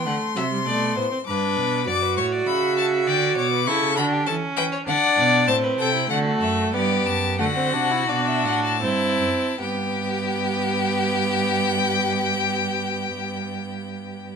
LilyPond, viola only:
\new Staff \with { instrumentName = "Viola" } { \time 3/4 \key g \major \tempo 4 = 95 a8 fis16 g16 a8 b16 c'16 d'4 | fis'2. | e'8 d'8 cis'4 d'4 | c'4 a4 b4 |
a16 c'16 d'16 e'16 d'4 c'4 | b2.~ | b2. | }